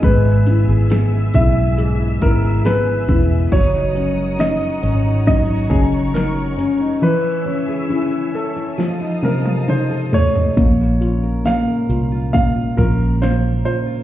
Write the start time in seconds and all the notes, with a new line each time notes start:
Already playing: B3 D#4 G#4 G#5
0.02 G#1 G#2 G#3 B4 E5 E6, kick, closed hi-hat
0.24 E4
0.46 B3 E4, closed hi-hat
0.69 G#1 G#4
0.90 B3 G#4, snare, closed hi-hat
1.13 G#4
1.34 B1 B3 E4 E5, kick, closed hi-hat
1.57 E4
1.78 G#2 G#4, closed hi-hat
2.00 E4
2.21 G#1 B3 E4 A#4, kick, closed hi-hat
2.44 G#4
2.64 B3 G#4 B4, snare, closed hi-hat
2.86 G#4
3.08 E1 B3 E4, kick, closed hi-hat
3.30 E4
3.52 F#1 F#3 C#5 F#5 A#5 D#6, kick, closed hi-hat
3.74 D#4
3.95 C#4, closed hi-hat
4.17 A#4
4.39 C#4 D#4 D#5, snare, closed hi-hat
4.61 A#4
4.82 G#1 C#4, closed hi-hat
5.05 D#4
5.27 F#3 D#4 D#5 C#6, kick, closed hi-hat
5.49 D#4
5.70 F#1 C#4 G#4, kick, closed hi-hat
5.92 A#4
6.14 C#4 D#4 A#4, snare, closed hi-hat
6.36 A#4
6.58 C#4, closed hi-hat
6.80 D#4
7.02 E3 E4 B4 E5 G#5 E6
7.24 E4
7.45 C#4
7.68 G#4
7.89 C#4 E4
8.34 C#4 A4
8.56 E4
8.78 F3 D#5 F5 A5 D#6, snare
9.01 D#4
9.22 C3 C4 A#4, high tom
9.45 A4, high tom
9.68 C4 D#4 C5, mid tom
9.90 A4
10.12 A3 C#5, floor tom
10.34 D#4, floor tom
10.56 A#1 A#2 A#3, kick, closed hi-hat
10.79 F4
11.01 C#4 F4, closed hi-hat
11.23 A#4
11.45 A#3 C#4 F5, snare, closed hi-hat
11.68 A#4
11.89 C2 C#4 F4, closed hi-hat
12.12 F4
12.33 A#2 A#3 F5, kick, closed hi-hat
12.55 F4
12.77 A#1 C#4 F4 A#4, kick, closed hi-hat
12.99 A#4
13.21 A#3 C#4 C5, snare, closed hi-hat
13.43 A#4
13.65 C#4 F4 C5, closed hi-hat
13.86 F4